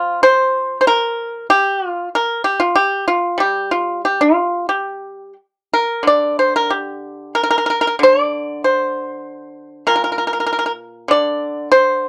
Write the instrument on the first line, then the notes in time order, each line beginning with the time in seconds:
pipa
Already playing: F3 F4
0.23 C5
0.81 C5
0.87 A#4
1.50 G4
1.87 F4
2.15 A#4
2.44 G4
2.60 F4
2.76 G4
3.08 F4
3.38 G3 G4
3.71 F4
4.05 G4
4.21 F4
4.69 G4
5.74 A#4
6.03 D3
6.07 D5
6.39 C5
6.56 A#4
6.70 G4
7.35 A#4
7.43 A#4
7.51 A#4
7.58 A#4
7.66 A#4
7.81 A#4
7.87 A#4
7.99 D3
8.03 C5
8.21 D5
8.64 C5
9.87 A#2 A#4
9.96 A#4
10.04 A#4
10.12 A#4
10.18 A#4
10.27 A#4
10.33 A#4
10.40 A#4
10.47 A#4
10.53 A#4
10.59 A#4
10.66 A#4
11.08 D3 D5
11.72 C5